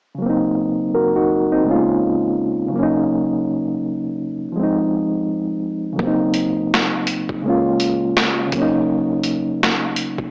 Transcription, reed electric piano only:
0.15 C#3 F#3
0.22 A#3 C4
0.29 D#4
0.94 F#4 A#4
1.16 D#4 F#4
1.52 C4 D#4
1.64 C#3 G#3 A3
1.69 C#4 F4
1.74 A#3
2.68 C#3 F#3
2.75 A#3 C#4
2.83 D#4
4.48 C#2 F3
4.56 G#3 C4
4.63 D#4
5.93 C#3 F#3
6.00 A#3 C4
6.07 D#4
7.42 C#3 G#3 A#3
7.48 C#4 F4
8.47 C#3 F#3
8.54 A#3 C#4
8.62 D#4
10.27 C#2

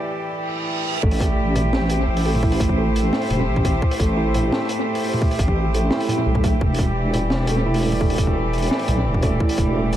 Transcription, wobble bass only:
1.03 A1
2.08 A1
2.60 A1
3.30 E1
3.47 A1
4.00 A1
5.39 A1
6.26 B1
6.61 E1
7.66 E1
8.18 E1
8.88 B1
9.06 E1
9.58 E1

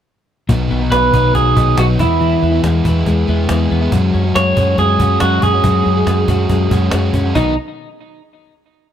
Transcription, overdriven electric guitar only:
0.49 B2 D#3 F#3 B3 D#4
0.81 F#3 B3 D#4
1.13 D#3 F#3 B3 D#4
1.55 D#3 F#3 B3 D#4
1.77 D#3 F#3 B3 D#4
1.98 E3 G#3 B3 E4
2.52 G#3 B3 E4
2.84 E3 G#3 B3 E4
3.27 E3 G#3 B3 E4
3.48 E3 G#3 B3 E4
3.81 G#3 B3 E4
3.92 F#3 G#3 C#4 F#4
4.24 G#3 C#4 F#4
4.56 F#3 G#3 C#4 F#4
4.99 F#3 G#3 C#4 F#4
5.20 F#3 G#3 C#4 F#4
5.53 G#3 C#4 F#4
5.64 F#3 G#3 C#4 F#4
5.96 G#3 C#4 F#4
6.28 F#3 G#3 C#4 F#4
6.70 F#3 G#3 C#4 F#4
6.92 F#3 G#3 C#4 F#4
7.24 G#3 C#4 F#4
7.35 B2 D#3 F#3 B3 D#4

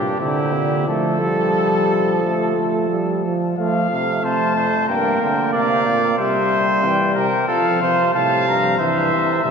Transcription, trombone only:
0.20 D3
0.87 A3
1.21 G3
2.22 A3
2.56 A3
2.90 G3
3.24 F3
3.58 A3
3.91 A3
4.89 A#3
6.18 G3
7.49 F3
8.14 C3
8.79 E3
9.44 C3

